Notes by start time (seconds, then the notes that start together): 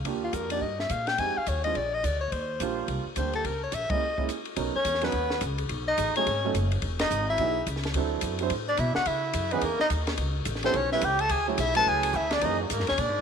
0.05 D#2 A#3 D4 F4 G4, kick, ride
0.24 F4
0.33 F2 A#4, kick, hi-hat pedal, ride
0.50 A#3 D4 D#4 G4 D5, ride
0.61 G2 D#5, kick
0.80 E5, snare
0.90 A#2 F5, kick, hi-hat pedal, ride
1.07 G5, snare, ride
1.18 F2 G#3 C4 D#4 G4 G#5, kick, ride
1.37 F5, muted upright bass stroke
1.46 D#2 C#5, kick, hi-hat pedal, ride
1.64 G#3 C4 D4 F4 D#5, ride
1.75 A#1 D5, kick, ride
1.94 D#5
2.04 D2 D5, kick, hi-hat pedal, ride
2.21 C#5
2.32 D#2 C5, kick, ride
2.60 A#1 G3 A#3 D4 F4, kick, hi-hat pedal, ride
2.88 C2, kick, ride
3.05 muted upright bass stroke
3.16 D2 G3 A#3 D4 G4 C5, kick, hi-hat pedal, ride
3.33 A4, ride
3.44 C#2 A#4, kick, ride
3.63 C#5
3.72 A#1 E5, kick, hi-hat pedal, ride
3.90 G#3 A#3 C#4 E4 D#5, muted upright bass stroke, kick, ride
4.18 G#3 A#3 C#4 E4, kick
4.29 kick, hi-hat pedal, ride
4.45 ride
4.56 B1 F#3 B3 C#4 D#4 A#4, kick, ride
4.75 C#4 C#5, muted upright bass stroke
4.85 E2, kick, hi-hat pedal, ride
4.95 snare
5.01 F#3 B3 C#4 D#4 B4 C#5, snare, ride
5.12 D#2, kick, ride
5.30 snare
5.41 C#2, kick, hi-hat pedal, ride
5.58 ride
5.69 B1, kick, ride
5.88 D#4 D#5
5.98 A1, kick, hi-hat pedal, ride
6.16 F#3 A3 C#4 D#4 G#4 C#5, muted upright bass stroke, ride
6.26 G#1, kick, ride
6.44 F#3 A3 C#4 D#4 A4
6.54 F#1, kick, hi-hat pedal, ride
6.72 ride
6.82 E1, kick, ride
6.99 D#4 D#5, snare, ride
7.10 G#1, hi-hat pedal
7.28 E4 E5
7.38 B1 F#3 B3 D#4 E4 G#4, kick, ride
7.66 C#2, kick, hi-hat pedal, ride
7.76 snare
7.83 snare, ride
7.94 D2 F#3 C4 D4 E4 A4, kick, ride
8.21 F#2, kick, hi-hat pedal, ride
8.39 F#3 C4 D4 E4 C5, ride
8.50 A2, kick, ride
8.68 D4 D5
8.77 B2 E4 E5, kick, hi-hat pedal, ride
8.95 F#4 F#5, muted upright bass stroke, snare
9.06 C#3 E4 E5, kick, ride
9.33 F#2, kick, hi-hat pedal, ride
9.51 E3 B3 C#4 D#4 G#4 B4, ride
9.61 E2 A#3 A#4, kick, ride
9.79 D#4 D#5, muted upright bass stroke, snare
9.90 D#2, kick, hi-hat pedal, ride
10.07 snare, ride
10.17 C#2, kick, ride
10.45 A1, kick, hi-hat pedal, ride
10.55 snare
10.63 G3 B3 C4 C#4 E4 A4 C5, snare, ride
10.73 B1 C#4 C#5, kick, ride
10.92 G3 B3 C#4 E4 B4 E5, snare
11.01 C#2 G4 G5, kick, hi-hat pedal, ride
11.19 A4 A5, ride
11.29 D2 G#4 G#5, kick, ride
11.48 F#3 A3 C#4 E4 G#4 C#5
11.58 B1 E4 E5, kick, hi-hat pedal, ride
11.75 F#3 A3 C#4 E4 A4 B4 A5, ride
11.86 C#2 G#4 G#5, kick
12.03 ride
12.13 D2 E4 E5, kick, hi-hat pedal
12.31 D4 D5, snare, ride
12.41 F#2 E3 A#3 C#4 D#4 G#4 D#5, kick, ride
12.59 F#3 F#4
12.70 G#2 A#3 A#4, kick, hi-hat pedal, ride
12.80 F#2, snare
12.87 E2 C#4 C#5, snare, ride
12.98 A#2 D4 D5, kick, ride
13.09 G#2